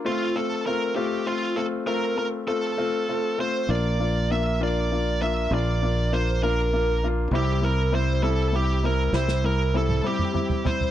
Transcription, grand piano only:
X:1
M:6/8
L:1/8
Q:3/8=66
K:F
V:1 name="Grand piano"
[A,CF] [A,CF] [A,CF] [A,CF] [A,CF] [A,CF] | [A,CF] [A,CF] [A,CF] [A,CF] [A,CF] [A,CF] | [B,DF] [B,DF] [B,DF] [B,DF] [B,DF] [B,DF] | [B,DF] [B,DF] [B,DF] [B,DF] [B,DF] [B,DF] |
[G,CE] [G,CE] [G,CE] [G,CE] [G,CE] [G,CE] | [G,CE] [G,CE] [G,CE] [G,CE] [G,CE] [G,CE] |]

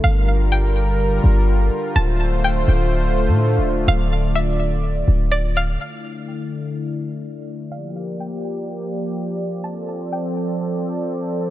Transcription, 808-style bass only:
X:1
M:4/4
L:1/16
Q:1/4=125
K:Dm
V:1 name="808-style bass" clef=bass
G,,,8- G,,,2 G,,,4 z2 | D,,,6 D,,,4- D,,, A,,2- A,,/2 D,,,2- D,,,/2 | D,,,8- D,,,2 D,,,6 | z16 |
z16 | z16 |]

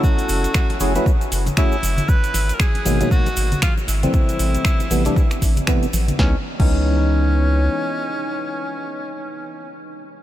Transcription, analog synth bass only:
X:1
M:4/4
L:1/16
Q:"Swing 16ths" 1/4=117
K:C#m
V:1 name="Analog synth bass" clef=bass
z2 F,,, z3 F,,, z3 F,,, z3 F,,, z | z2 G,,, z3 G,,, z3 G,,, z3 G,,, z | z2 A,,, z3 A,,, z3 A,,, z3 A,,, z | C,, z2 C,,8- C,, z4 |
z16 |]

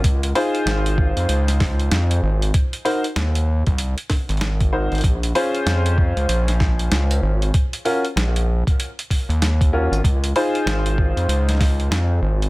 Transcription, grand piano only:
X:1
M:4/4
L:1/8
Q:"Swing 16ths" 1/4=96
K:Db
V:1 name="Grand piano"
z [EFAc]6- [EFAc] | z [EGBc] z4 z [EGBc] | z [DFAc]6- [DFAc] | z [DFGB] z4 z [DFGB] |
z [EFAc]6- [EFAc] |]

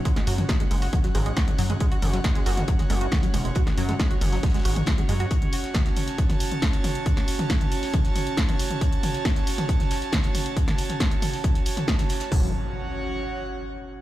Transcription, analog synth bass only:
X:1
M:4/4
L:1/8
Q:1/4=137
K:F#m
V:1 name="Analog synth bass" clef=bass
z F,, z F,,, z G,,, z F,, | z F,,, z F,,, z F,,, z E,,, | z F,, z F,,, z G,,, z F,, | z8 |
z8 | z8 | z8 | F,,, z6 z |]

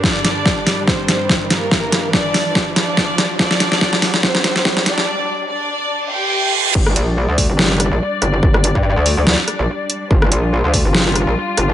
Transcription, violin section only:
X:1
M:4/4
L:1/8
Q:"Swing 16ths" 1/4=143
K:Gm
V:1 name="Violin section"
[Dd]4 [Cc]3 [B,B]- | [B,B]2 [Dd]3 [Dd]3 | [Dd]4 [Cc]3 [Dd]- | [Dd]2 [Dd]3 [Gg]3 |
z8 | z8 | z8 |]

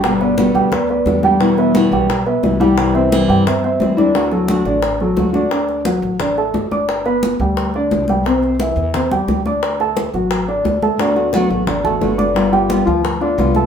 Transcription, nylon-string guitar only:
X:1
M:4/4
L:1/8
Q:1/4=175
K:Dmix
V:1 name="Nylon-string guitar"
[B,,D,G,B,G]2 [B,,D,G,B,G]2 z2 [D,G,B,G] [D,G,B,G] | [B,,E,G,B,E]2 [B,,E,G,B,E]2 z2 [E,G,B,E] [E,G,B,E] | [C,E,G,CE]2 [C,E,G,CE]2 z2 [E,G,CE] [E,G,CE] | [D,A,DF]2 [D,A,DF]2 z2 [D,A,DF] [A,DF] |
z8 | z8 | z8 | z8 |
[D,A,B,F] [A,B,F] [D,A,B,F] [A,B,F] z [A,B,F] [D,A,B,F]2 | [G,B,=F] [B,F] [G,B,F] [B,F] z [B,F] [G,B,F]2 |]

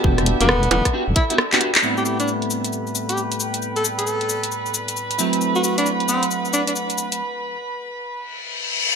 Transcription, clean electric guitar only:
X:1
M:4/4
L:1/16
Q:"Swing 16ths" 1/4=134
K:Ador
V:1 name="Clean electric guitar"
[B,DFG]3 [B,DFG] z4 [B,DFG] z2 [B,DFG] z [B,DFG] [B,DFG] z | [A,,G,B,CE]16- | [A,,G,B,CE]12- [A,,G,B,CE]2 [F,A,CE]2- | [F,A,CE]16 |
z16 |]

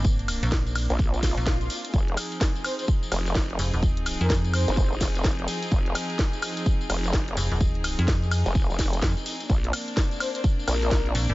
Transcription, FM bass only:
X:1
M:4/4
L:1/16
Q:"Swing 16ths" 1/4=127
K:Fdor
V:1 name="FM bass" clef=bass
A,,,3 B,,,4 z4 B,,,3 z2 | z12 z2 F,,, E,,,- | E,,,3 F,,4 z8 z | z12 z2 F,,, E,,,- |
E,,,3 F,,4 z4 z F,, z3 | z12 z2 B,,, A,,, |]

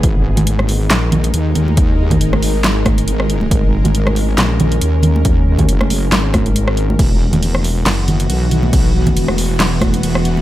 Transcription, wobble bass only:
X:1
M:4/4
L:1/8
Q:"Swing 16ths" 1/4=138
K:G#m
V:1 name="Wobble bass" clef=bass
G,,,4 A,,,2 D,,2- | D,,2 G,,,4 G,,,2 | G,,,4 A,,,2 D,,2- | D,,2 F,,,2 G,,,4 |
E,,,4 F,,,2 B,,,2- | B,,,2 E,,,4 E,,,2 |]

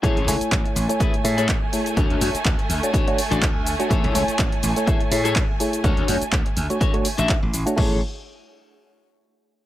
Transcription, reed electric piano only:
X:1
M:4/4
L:1/16
Q:"Swing 16ths" 1/4=124
K:A
V:1 name="Reed electric piano"
[A,EGc] z [A,Ecg]4- [A,Ecg] [A,Ecg]3 [A,EGc] [A,EGc] z2 [A,EGc]2 | [A,DFc] z [A,DFc] z4 [A,DFc] z [A,DFc] z4 z [A,DFc] | [A,EGc] z [A,Ecg]4- [A,Ecg] [A,Ecg]3 [A,EGc] [A,EGc] z2 [A,EGc]2 | [A,DFc] z [A,DFc] z4 [A,DFc] z [A,DFc] z4 z [A,DFc] |
[A,EGc]2 z12 z2 |]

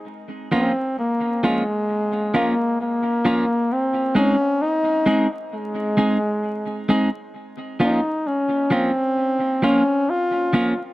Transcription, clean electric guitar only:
X:1
M:4/4
L:1/8
Q:"Swing 16ths" 1/4=66
K:Bbm
V:1 name="Clean electric guitar"
z [F,B,DF] z [F,B,DF] z [F,B,DF] z [F,B,DF] | z [A,CEA] z [A,CEA] z [A,CEA] z [A,CEA] | z [F,B,DF] z [F,B,DF] z [F,B,DF] z [F,B,DF] |]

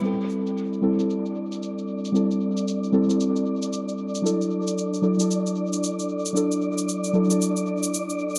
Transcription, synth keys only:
X:1
M:4/4
L:1/16
Q:"Swing 16ths" 1/4=114
K:Ador
V:1 name="Synth keys"
[G,CEA]6 [G,CEA] [G,CEA]8- [G,CEA] | [G,CEA]6 [G,CEA] [G,CEA]8- [G,CEA] | [F,DEA]6 [F,DEA] [F,DEA]8- [F,DEA] | [F,DEA]6 [F,DEA] [F,DEA]8- [F,DEA] |]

